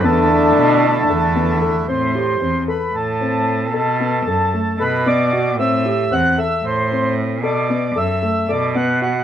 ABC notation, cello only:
X:1
M:7/8
L:1/8
Q:1/4=114
K:Ador
V:1 name="Cello" clef=bass
E,,2 B,,2 E,,3 | A,,2 E,, z A,,3 | B,,2 F,, z B,,3 | A,,2 E,, z A,,3 |
B,,2 F,, z B,,3 |]